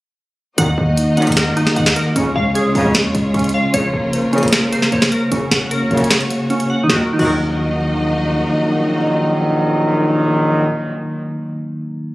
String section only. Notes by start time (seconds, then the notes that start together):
0.58 A#3 D#4 F#4 D#5
2.16 G#3 C#4 F4 C#5
3.74 A#3 A#4
5.32 F#4 C#5
6.90 A#3 D#4 F#4 D#5